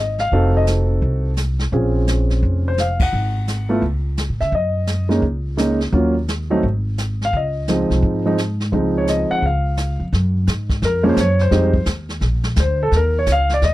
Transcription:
Already playing: G#1
0.00 D#5
0.18 F5, snare
0.31 F1 C4 D#4 F#4 A4, brush sweep, kick
0.57 D#5
0.67 snare, hi-hat pedal
1.02 C2, brush sweep, kick
1.37 snare, hi-hat pedal
1.59 snare
1.72 A#1 C4 C#4 F4 G#4, brush sweep, kick
2.07 snare, hi-hat pedal
2.30 snare
2.42 F1, brush sweep, kick
2.68 C5
2.78 F5, snare, hi-hat pedal
3.00 F#5, kick, ride
3.12 G#1, brush sweep
3.47 snare, hi-hat pedal
3.69 A3 B3 E4 F4
3.82 C#2, brush sweep, kick
4.17 snare, hi-hat pedal
4.29 A2
4.40 C#3 E5, snare
4.52 F#2 D#5, brush sweep, kick
4.87 snare, hi-hat pedal
5.09 G#3 A#3 C#4 D#4, snare
5.22 C#2, brush sweep, kick
5.57 G#3 A#3 C#4 D#4, snare, hi-hat pedal
5.80 snare
5.92 D#2 F#3 A#3 C#4 F4, brush sweep, kick
6.28 snare, hi-hat pedal
6.50 F#3 A3 C4 D#4
6.63 G#1, brush sweep, kick
6.98 snare, hi-hat pedal
7.21 F5, snare
7.33 C#2 D#5, brush sweep, kick
7.68 F3 G#3 C4 D#4, snare, hi-hat pedal
7.90 C2, snare
8.02 G#2, brush sweep, kick
8.26 F3 G#3 C4 D#4
8.38 snare, hi-hat pedal
8.60 snare
8.72 C#2 F3 G#3 C4 D#4, brush sweep, kick
8.98 C#5
9.07 D#5, snare, hi-hat pedal
9.31 F#5
9.42 C#2 F5, brush sweep, kick
9.77 snare, hi-hat pedal
10.00 F2
10.13 F#2, brush sweep, kick, snare
10.47 G#2, kick, snare, hi-hat pedal
10.70 kick, snare
10.82 F2 A#4, brush sweep, kick, snare
11.03 F3 G#3 A#3 C#4
11.09 C5
11.17 F#2 C#5, kick, snare, hi-hat pedal
11.39 C5, snare
11.51 F2 G3 G#3 C4 D#4, brush sweep, kick, snare
11.74 kick
11.86 D#2, kick, snare, hi-hat pedal
12.09 snare
12.21 A#1, brush sweep, kick, snare
12.44 snare
12.56 D2, kick, snare, hi-hat pedal
12.60 C5
12.83 A4
12.92 D#2, brush sweep, kick, snare
12.96 A#4
13.19 C#5
13.26 C#2, kick, snare, hi-hat pedal
13.32 F5
13.49 snare
13.54 D5
13.62 D#2 D#5, brush sweep, kick, snare

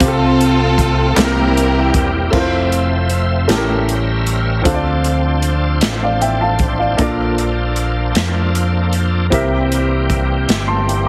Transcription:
Already playing: F4
0.00 C2 C3 A3 C4 F4 G4 A4, kick, closed hi-hat
0.08 A4
0.41 closed hi-hat
0.78 kick, closed hi-hat
1.15 C2 C3 E3 G3 A#3 C4 E4 G4 A4 A#4, snare, clap, closed hi-hat
1.20 E4 G4
1.25 A#4
1.57 closed hi-hat
1.94 E1, kick, closed hi-hat
2.30 F1 F3 A3 C4 E4 F4 A#4 C5 E5, kick, crash
2.40 C5
2.72 closed hi-hat
3.10 closed hi-hat
3.48 A1 A2 G3 A3 C#4 E4 G4 A4 A#4, snare, closed hi-hat
3.56 A#4
3.89 closed hi-hat
4.26 closed hi-hat
4.63 D2 D3 F3 C4 D4 F4 A4, kick, closed hi-hat
4.68 C5
4.74 D5
5.04 closed hi-hat
5.42 closed hi-hat
5.81 A1, snare, closed hi-hat
6.03 D5 F5
6.22 E5 G5, closed hi-hat
6.41 F5 A5
6.59 kick, closed hi-hat
6.79 D5 F5
6.97 A#1 A#2 A#3 D4 F4 A4, kick, closed hi-hat
7.01 D5
7.38 closed hi-hat
7.76 closed hi-hat
8.15 F2, snare, closed hi-hat
8.55 closed hi-hat
8.93 closed hi-hat
9.30 C2 C3 E3 G3 C4 E4 G4 A#4, kick, closed hi-hat
9.34 E5
9.72 closed hi-hat
10.10 kick, closed hi-hat
10.48 G1, snare, closed hi-hat
10.68 A5 C6
10.89 closed hi-hat

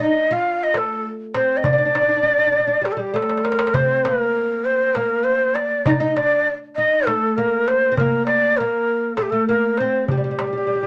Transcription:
0.00 D#4 D#5
0.31 F4 F5
0.63 D#5
0.74 A3 A4, darbuka tek
1.34 C4 C5, darbuka tek
1.57 D#5
1.64 D4 D5, darbuka dum
1.73 D4
1.78 D4
1.85 D4
1.95 D4, darbuka tek
2.02 D4
2.09 D4
2.17 D4
2.23 D4
2.30 D4
2.38 D4, darbuka ka
2.47 D4
2.52 D4, darbuka ka
2.60 D4
2.67 D4
2.82 G3, darbuka tek
2.86 G4
2.92 A4
2.97 G3 G4
3.14 A3 A4, darbuka tek
3.22 darbuka ka
3.29 darbuka tek
3.37 darbuka ka
3.44 A#4, darbuka tek
3.52 darbuka ka
3.59 darbuka tek
3.67 darbuka ka
3.74 C4 C5, darbuka dum
4.05 A#3 A#4, darbuka tek
4.65 C5
4.95 A#3 A#4, darbuka tek
5.24 C5
5.55 D5, darbuka tek
5.85 D#4 D#5, darbuka dum
5.90 D5
5.99 D#4 D#5
6.08 D#5
6.16 D4 D5, darbuka tek
6.75 D#4 D#5
7.06 A3 A4, darbuka tek
7.37 A#3 A#4
7.68 C5, darbuka tek
7.92 C4
7.97 A#3 A#4, darbuka dum
8.26 D5, darbuka tek
8.57 A#3 A#4
9.16 A3 A4, darbuka tek
9.22 G4
9.30 A3 A4
9.48 A#3 A#4
9.77 C4 C5, darbuka tek
10.08 G3 G4, darbuka dum
10.17 G3
10.24 G3
10.31 G3
10.39 G3, darbuka tek
10.47 G3
10.53 G3
10.58 G3
10.67 G3
10.75 G3
10.83 G3, darbuka ka

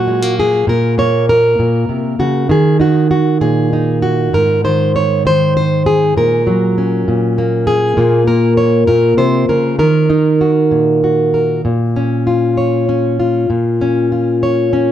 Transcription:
Already playing: A#2 F#3 F#4
0.07 G#3
0.22 A#3
0.40 G#4
0.67 A#2 A#4
0.98 A#3 C#5
1.29 A#4
1.59 A#2
1.89 C3
2.19 C#3 F#4
2.49 D#3 G#4
2.80 D#4 F#4
3.11 F#4
3.41 A#2 G#4
3.73 D#4
4.02 F#4
4.33 G#2 A#4
4.64 D#3 C5
4.96 C#5
5.25 D#3 C5
5.57 C5
5.86 G#4
6.17 A#2 A#4
6.47 F#3
6.78 C#4
7.08 A#2
7.38 A#3
7.67 G#4
7.97 A#2 A#3 F4
8.27 A#3 A#4
8.57 C#5
8.87 A#2 A#4
9.17 C3 C5
9.49 C#3 A#4
9.79 D#3 A#4
10.10 D#4
10.41 F#4
10.71 A#2
11.04 F#4
11.34 A#4
11.65 A#2
11.96 C#4
12.27 F4
12.57 C#5
12.89 C#4
13.20 F4
13.50 A#2
13.81 C#4
14.12 F4
14.43 C#5
14.73 C#4

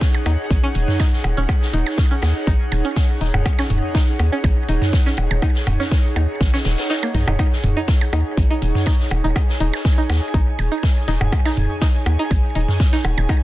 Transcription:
Already playing: D#4 G#4 C#5 F#5
0.01 kick, snare, closed hi-hat
0.14 percussion blips
0.26 D#2 D#4, closed hi-hat, percussion blips
0.51 A#1, kick, closed hi-hat
0.63 C#4
0.75 D#1, closed hi-hat
0.88 snare, mid tom
0.99 D#4, kick, snare, closed hi-hat, percussion blips
1.13 snare
1.24 D#1, closed hi-hat, percussion blips
1.37 D#1 C#4
1.49 kick, closed hi-hat, percussion blips
1.62 snare
1.73 D#1 D#4, closed hi-hat
1.86 snare, percussion blips
1.97 kick, snare, closed hi-hat
2.11 C#4
2.22 D#2, snare, closed hi-hat, percussion blips
2.47 A#1 D#4, kick, closed hi-hat
2.72 D#1, closed hi-hat, percussion blips
2.85 C#4
2.96 kick, snare, closed hi-hat
3.21 D#1 D#4, snare, closed hi-hat
3.34 D#1, mid tom, percussion blips
3.46 kick, closed hi-hat, percussion blips
3.59 C#4, snare, percussion blips
3.70 D#1, closed hi-hat, mid tom
3.95 D#4, kick, snare, closed hi-hat
4.19 D#2, closed hi-hat, percussion blips
4.32 C#4
4.44 A#1, kick, closed hi-hat, percussion blips
4.69 D#1 D#4, closed hi-hat
4.82 snare, mid tom
4.93 kick, snare, closed hi-hat
5.06 C#4, snare
5.17 D#1, closed hi-hat, percussion blips
5.31 D#1, percussion blips
5.42 D#4, kick, closed hi-hat, percussion blips
5.55 snare, closed hi-hat
5.67 D#1, closed hi-hat, mid tom, percussion blips
5.80 C#4, snare
5.91 kick, snare, closed hi-hat
6.16 D#2 D#4, closed hi-hat, percussion blips
6.41 A#1, kick, snare, closed hi-hat
6.53 C#4, snare, closed hi-hat
6.65 D#1, snare, closed hi-hat
6.78 snare, closed hi-hat
6.90 D#4, snare, closed hi-hat
7.03 A#3, percussion blips
7.14 A#1 D#4, snare, closed hi-hat, mid tom
7.27 D#1 D#4, mid tom, percussion blips
7.39 D#4, kick, closed hi-hat, percussion blips
7.52 snare
7.64 D#1, closed hi-hat, mid tom
7.77 D#4
7.88 kick, snare, closed hi-hat
8.01 percussion blips
8.13 D#2 D#4, closed hi-hat, percussion blips
8.37 A#1, kick, closed hi-hat
8.50 D#4
8.62 D#1, closed hi-hat
8.75 snare, mid tom
8.86 D#4, kick, snare, closed hi-hat, percussion blips
8.92 G#5
9.00 snare
9.10 D#1, closed hi-hat, percussion blips
9.24 D#1 D#4
9.36 kick, closed hi-hat, percussion blips
9.49 snare
9.60 D#1 D#4, closed hi-hat
9.73 snare, percussion blips
9.85 kick, snare, closed hi-hat
9.98 D#4
10.09 D#2, snare, closed hi-hat, percussion blips
10.34 A#1 D#4, kick, closed hi-hat
10.59 D#1, closed hi-hat, percussion blips
10.72 D#4
10.83 kick, snare, closed hi-hat
11.08 D#1 D#4, snare, closed hi-hat
11.21 D#1, mid tom, percussion blips
11.32 kick, closed hi-hat, percussion blips
11.45 D#4, snare, percussion blips
11.57 D#1, closed hi-hat, mid tom
11.81 D#4, kick, snare, closed hi-hat
12.06 D#2, closed hi-hat, percussion blips
12.19 D#4
12.31 A#1, kick, closed hi-hat, percussion blips
12.55 D#1 D#4, closed hi-hat
12.68 snare, mid tom
12.80 kick, snare, closed hi-hat
12.93 D#4, snare
13.05 D#1, closed hi-hat, percussion blips
13.18 D#1, percussion blips
13.29 D#4, kick, closed hi-hat, percussion blips

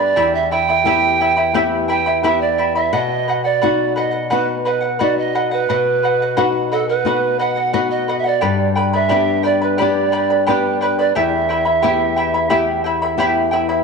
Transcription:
Already playing: G2 B3 D4 G4 D5
0.00 B4 D5 B5
0.16 E2 E4 G4 E5 G5 B5
0.35 E5
0.51 E4 E5 G5 B5
0.69 E4 E5 B5
0.85 B3 E4 G4 E5 G5 B5
1.20 E4 E5 G5 B5
1.37 E4 E5 B5
1.54 B3 E4 G4 E5 G5 B5
1.88 E4 E5 G5 B5
2.06 E4 E5 B5
2.23 B3 E4 G4 E5 G5 B5
2.41 D5
2.58 E4 E5 G5 B5
2.75 E4 E5 B5
2.93 B2 B4 D#5 F#5
3.28 B4 D#5 F#5
3.44 D5 D#5 F#5
3.62 B3 D#4 F#4 B4 F#5
3.96 B4 D#5 F#5
4.11 D#5 F#5
4.30 B3 D#4 F#4 B4 D#5 F#5
4.65 B4 D#5 F#5
4.81 D#5 F#5
4.99 B3 D#4 F#4 B4 D5 D#5 F#5
5.18 D#5
5.35 B4 D#5 F#5
5.51 B4 D#5 F#5
5.69 B2 B4 D#5 F#5
6.03 B4 D#5 F#5
6.22 D#5 F#5
6.37 B3 D#4 F#4 B4 D#5 F#5
6.72 A4 B4 D#5 F#5
6.89 B4 D#5 F#5
7.05 B3 D#4 F#4 B4 D#5 F#5
7.39 B4 D#5 F#5
7.56 D#5 F#5
7.73 B3 D#4 F#4 B4 D#5 F#5
7.90 D#5
8.08 B4 D#5 F#5
8.18 E5
8.24 D5 D#5 F#5
8.41 G2 G4 B4 D5 G5 B5
8.76 B4 D5 G5 B5
8.93 B4 D5 E5 B5
9.09 B3 D4 G4 B4 D5 G5 B5
9.43 B4 D5 G5 B5
9.62 B4 D5 B5
9.78 B3 D4 G4 B4 D5 G5 B5
10.12 B4 D5 G5 B5
10.30 B4 D5 B5
10.47 B3 D4 G4 B4 D5 G5 B5
10.81 B4 D5 G5 B5
10.99 B4 D5 B5
11.15 E2 E4 G4 E5 G5 B5
11.49 E4 E5 G5 B5
11.65 E4 E5 B5
11.82 B3 E4 G4 E5 G5 B5
12.16 E4 E5 G5 B5
12.34 E4 E5 B5
12.50 B3 E4 G4 E5 G5 B5
12.84 E4 E5 G5 B5
13.02 E4 E5 B5
13.18 B3 E4 G4 E5 G5 B5
13.51 E4 E5 G5 B5
13.69 E4 E5 B5

